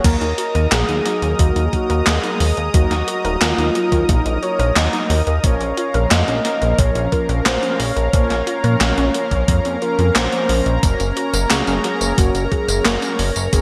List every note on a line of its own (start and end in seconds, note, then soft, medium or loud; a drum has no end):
0.04 0.17 D#2 loud
0.04 0.24 F#3 loud
0.04 0.19 A#3 medium
0.04 0.24 A#3 medium
0.04 0.24 D#4 medium
0.04 13.61 A#4 medium
0.04 0.24 A#4 loud
0.04 0.68 A#4 loud
0.04 5.40 D#5 medium
0.04 5.40 A#5 medium
0.04 5.40 D#6 medium
0.04 kick loud
0.04 closed hi-hat loud
0.04 crash loud
0.21 0.34 D#2 medium
0.21 0.31 D#4 medium
0.21 closed hi-hat soft
0.38 0.44 F#4 loud
0.38 closed hi-hat medium
0.55 0.67 D#2 medium
0.55 1.02 F#3 medium
0.55 1.02 A#3 medium
0.55 1.02 D#4 medium
0.55 0.65 A#4 loud
0.55 1.02 A#4 medium
0.55 closed hi-hat soft
0.72 0.84 A#1 loud
0.72 0.78 A#3 medium
0.72 1.41 G#4 loud
0.72 snare loud
0.72 clap loud
0.72 closed hi-hat medium
0.89 1.01 D#2 medium
0.89 0.98 D#4 loud
0.89 closed hi-hat soft
1.05 1.69 F#3 loud
1.05 1.69 A#3 medium
1.05 1.69 D#4 medium
1.05 1.11 F#4 medium
1.05 1.69 A#4 loud
1.05 snare soft
1.05 closed hi-hat medium
1.22 1.35 D#2 medium
1.22 1.28 A#4 medium
1.22 closed hi-hat soft
1.39 1.52 D#2 loud
1.39 1.54 A#3 medium
1.39 1.65 F#4 loud
1.39 kick loud
1.39 closed hi-hat loud
1.56 1.68 D#2 medium
1.56 1.66 D#4 medium
1.56 closed hi-hat soft
1.66 1.75 G#4 medium
1.73 2.20 F#3 medium
1.73 2.19 A#3 medium
1.73 2.19 D#4 medium
1.73 1.79 F#4 loud
1.73 2.08 F#4 loud
1.73 2.19 A#4 medium
1.73 kick medium
1.73 closed hi-hat soft
1.90 2.02 D#2 medium
1.90 2.00 A#4 loud
1.90 closed hi-hat soft
2.07 2.19 D#2 loud
2.07 2.13 A#3 medium
2.07 2.76 G#4 loud
2.07 snare loud
2.07 clap loud
2.07 closed hi-hat loud
2.23 2.43 F#3 medium
2.23 2.43 A#3 medium
2.23 2.33 D#4 loud
2.23 2.43 D#4 medium
2.23 2.43 A#4 loud
2.23 closed hi-hat soft
2.40 2.53 D#2 medium
2.40 2.46 F#4 medium
2.40 open hi-hat medium
2.57 2.70 D#2 medium
2.57 2.63 A#4 medium
2.57 closed hi-hat soft
2.74 2.86 D#2 loud
2.74 2.94 F#3 loud
2.74 2.89 A#3 medium
2.74 2.94 A#3 medium
2.74 2.94 D#4 medium
2.74 3.43 F#4 loud
2.74 2.94 A#4 loud
2.74 kick loud
2.74 closed hi-hat loud
2.91 3.03 D#2 medium
2.91 3.01 D#4 medium
2.91 snare soft
2.91 closed hi-hat soft
3.08 3.14 F#4 loud
3.08 closed hi-hat medium
3.25 3.37 D#1 medium
3.25 3.71 F#3 medium
3.25 3.71 A#3 medium
3.25 3.71 D#4 medium
3.25 3.34 A#4 loud
3.25 3.71 A#4 medium
3.25 closed hi-hat soft
3.41 3.54 D#2 loud
3.41 3.47 A#3 medium
3.41 4.09 F4 loud
3.41 snare loud
3.41 clap loud
3.41 closed hi-hat loud
3.58 3.71 D#2 medium
3.58 3.68 D#4 loud
3.58 closed hi-hat soft
3.75 4.39 F#3 loud
3.75 4.39 A#3 medium
3.75 4.39 D#4 medium
3.75 3.81 F#4 medium
3.75 4.39 A#4 loud
3.75 closed hi-hat medium
3.92 4.04 D#2 medium
3.92 3.98 A#4 medium
3.92 kick medium
3.92 closed hi-hat soft
4.09 4.21 A#1 loud
4.09 4.24 A#3 medium
4.09 4.40 D#4 loud
4.09 kick loud
4.09 closed hi-hat medium
4.26 4.38 A#1 medium
4.26 4.36 D#4 medium
4.26 closed hi-hat soft
4.43 4.89 F#3 medium
4.43 4.89 A#3 medium
4.43 4.89 D#4 medium
4.43 4.49 F#4 loud
4.43 4.89 A#4 medium
4.43 4.74 C#5 loud
4.43 closed hi-hat soft
4.59 4.72 A#1 medium
4.59 4.69 A#4 loud
4.59 closed hi-hat soft
4.76 4.89 D#2 loud
4.76 4.82 A#3 medium
4.76 5.45 D#5 loud
4.76 snare loud
4.76 clap loud
4.76 closed hi-hat loud
4.93 5.13 F#3 loud
4.93 5.13 A#3 medium
4.93 5.03 D#4 loud
4.93 5.13 D#4 medium
4.93 5.13 A#4 loud
4.93 closed hi-hat soft
5.10 5.22 D#2 loud
5.10 5.16 F#4 medium
5.10 open hi-hat medium
5.27 5.39 D#2 medium
5.27 5.33 A#4 medium
5.27 closed hi-hat soft
5.44 5.56 A#1 loud
5.44 5.63 F3 loud
5.44 5.63 A#3 medium
5.44 5.59 A#3 medium
5.44 5.63 C#4 medium
5.44 13.61 C#4 medium
5.44 5.63 A#4 loud
5.44 5.77 C#5 loud
5.44 10.79 F5 medium
5.44 13.61 A#5 medium
5.44 kick loud
5.44 closed hi-hat loud
5.61 5.73 A#1 medium
5.61 5.70 C#4 medium
5.61 closed hi-hat soft
5.77 5.83 F4 loud
5.77 6.13 C#5 loud
5.77 closed hi-hat medium
5.94 6.07 A#1 medium
5.94 6.41 F3 medium
5.94 6.41 A#3 medium
5.94 6.41 C#4 medium
5.94 6.04 A#4 loud
5.94 6.41 A#4 medium
5.94 closed hi-hat soft
6.11 6.23 F2 loud
6.11 6.17 A#3 medium
6.11 6.78 D#5 loud
6.11 snare loud
6.11 clap medium
6.11 closed hi-hat medium
6.28 6.40 A#1 medium
6.28 6.38 C#4 loud
6.28 closed hi-hat soft
6.45 7.08 F3 loud
6.45 7.08 A#3 medium
6.45 7.08 C#4 medium
6.45 6.51 F4 medium
6.45 7.08 A#4 loud
6.45 snare soft
6.45 closed hi-hat medium
6.62 6.74 A#1 medium
6.62 6.68 A#4 medium
6.62 closed hi-hat soft
6.78 6.91 A#1 loud
6.78 6.93 A#3 medium
6.78 7.14 C#5 loud
6.78 kick loud
6.78 closed hi-hat loud
6.95 7.08 A#1 medium
6.95 7.05 C#4 medium
6.95 closed hi-hat soft
7.12 7.59 F3 medium
7.12 7.59 A#3 medium
7.12 7.59 C#4 medium
7.12 7.18 F4 loud
7.12 7.47 A#4 loud
7.12 7.59 A#4 medium
7.12 kick medium
7.12 closed hi-hat soft
7.29 7.41 A#1 medium
7.29 7.39 A#4 loud
7.29 closed hi-hat soft
7.46 7.58 A#1 loud
7.46 7.52 A#3 medium
7.46 7.79 C5 loud
7.46 snare loud
7.46 clap medium
7.46 closed hi-hat loud
7.63 7.82 F3 medium
7.63 7.82 A#3 medium
7.63 7.73 C#4 loud
7.63 7.82 C#4 medium
7.63 7.82 A#4 loud
7.63 closed hi-hat soft
7.80 7.92 A#1 loud
7.80 7.86 F4 medium
7.80 9.83 C#5 loud
7.80 open hi-hat medium
7.96 8.09 A#1 medium
7.96 8.02 A#4 medium
7.96 closed hi-hat soft
8.13 8.26 A#1 loud
8.13 8.33 F3 loud
8.13 8.28 A#3 medium
8.13 8.33 A#3 medium
8.13 8.33 C#4 medium
8.13 8.33 A#4 loud
8.13 kick loud
8.13 closed hi-hat medium
8.30 8.42 A#1 medium
8.30 8.40 C#4 medium
8.30 snare soft
8.30 closed hi-hat soft
8.47 8.53 F4 loud
8.47 closed hi-hat medium
8.64 8.76 A#2 medium
8.64 9.11 F3 medium
8.64 9.10 A#3 medium
8.64 9.10 C#4 medium
8.64 8.74 A#4 loud
8.64 9.11 A#4 medium
8.64 closed hi-hat soft
8.81 8.93 A#1 loud
8.81 8.87 A#3 medium
8.81 snare loud
8.81 clap medium
8.81 closed hi-hat medium
8.98 9.10 A#1 medium
8.98 9.07 C#4 loud
8.98 closed hi-hat soft
9.14 9.78 F3 loud
9.14 9.78 A#3 medium
9.14 9.78 C#4 medium
9.14 9.20 F4 medium
9.14 9.78 A#4 loud
9.14 closed hi-hat medium
9.31 9.44 A#1 medium
9.31 9.37 A#4 medium
9.31 kick medium
9.31 closed hi-hat soft
9.48 9.60 F2 loud
9.48 9.63 A#3 medium
9.48 kick loud
9.48 closed hi-hat medium
9.65 9.77 F2 medium
9.65 9.75 C#4 medium
9.65 closed hi-hat soft
9.82 10.28 F3 medium
9.82 10.28 A#3 medium
9.82 10.28 C#4 medium
9.82 9.92 F4 medium
9.82 10.17 A#4 loud
9.82 10.28 A#4 medium
9.82 closed hi-hat soft
9.99 10.11 F2 medium
9.99 10.09 F4 medium
9.99 closed hi-hat soft
10.15 10.28 A#1 loud
10.15 10.30 A#4 medium
10.15 10.85 C5 loud
10.15 snare loud
10.15 clap medium
10.15 closed hi-hat medium
10.32 10.79 F3 loud
10.32 10.42 A#3 medium
10.32 10.79 A#3 medium
10.32 10.79 C#4 medium
10.32 10.79 A#4 loud
10.32 closed hi-hat soft
10.49 10.62 A#1 medium
10.49 10.64 F4 medium
10.49 open hi-hat medium
10.66 10.78 A#1 medium
10.66 10.72 C#5 medium
10.66 closed hi-hat soft
10.83 10.95 F#1 loud
10.83 11.03 F#3 loud
10.83 10.98 A#3 medium
10.83 11.03 A#3 medium
10.83 11.03 C#4 medium
10.83 11.52 A#4 loud
10.83 11.03 A#4 loud
10.83 13.61 C#5 medium
10.83 kick loud
10.83 closed hi-hat medium
10.83 tambourine medium
11.00 11.12 F#1 medium
11.00 11.10 C#4 medium
11.00 closed hi-hat soft
11.00 tambourine soft
11.17 11.23 F#4 loud
11.17 closed hi-hat medium
11.34 11.46 F#1 medium
11.34 11.80 F#3 medium
11.34 11.80 A#3 medium
11.34 11.80 C#4 medium
11.34 11.43 A#4 loud
11.34 11.80 A#4 medium
11.34 closed hi-hat soft
11.34 tambourine medium
11.50 11.63 C#2 loud
11.50 11.56 A#3 medium
11.50 12.19 G#4 loud
11.50 snare loud
11.50 clap medium
11.50 closed hi-hat medium
11.50 tambourine medium
11.67 11.80 F#1 medium
11.67 11.77 C#4 loud
11.67 closed hi-hat soft
11.67 tambourine soft
11.84 12.48 F#3 loud
11.84 12.48 A#3 medium
11.84 12.48 C#4 medium
11.84 11.90 F#4 medium
11.84 12.48 A#4 loud
11.84 snare soft
11.84 closed hi-hat medium
12.01 12.13 F#1 medium
12.01 12.07 A#4 medium
12.01 closed hi-hat soft
12.01 tambourine medium
12.18 12.30 F#1 loud
12.18 12.33 A#3 medium
12.18 12.46 F#4 loud
12.18 kick loud
12.18 closed hi-hat medium
12.18 tambourine medium
12.35 12.47 F#1 medium
12.35 12.45 C#4 medium
12.35 closed hi-hat soft
12.35 tambourine soft
12.45 12.53 A#4 medium
12.52 12.98 F#3 medium
12.52 12.98 A#3 medium
12.52 12.98 C#4 medium
12.52 12.57 F#4 loud
12.52 12.87 G#4 loud
12.52 12.98 A#4 medium
12.52 kick medium
12.52 closed hi-hat soft
12.68 12.81 F#1 medium
12.68 12.78 A#4 loud
12.68 closed hi-hat soft
12.68 tambourine medium
12.85 12.98 F#1 loud
12.85 12.91 A#3 medium
12.85 13.52 A#4 loud
12.85 snare loud
12.85 clap medium
12.85 closed hi-hat medium
12.85 tambourine medium
13.02 13.22 F#3 medium
13.02 13.22 A#3 medium
13.02 13.12 C#4 loud
13.02 13.22 C#4 medium
13.02 13.22 A#4 loud
13.02 closed hi-hat soft
13.02 tambourine soft
13.19 13.31 F#1 loud
13.19 13.25 F#4 medium
13.19 open hi-hat medium
13.36 13.48 F#1 medium
13.36 13.42 A#4 medium
13.36 closed hi-hat soft
13.36 tambourine medium
13.53 13.61 F#1 loud
13.53 13.61 F#3 loud
13.53 13.61 A#3 medium
13.53 13.61 C#4 medium
13.53 13.61 G#4 loud
13.53 13.61 A#4 loud
13.53 kick loud
13.53 closed hi-hat medium
13.53 tambourine medium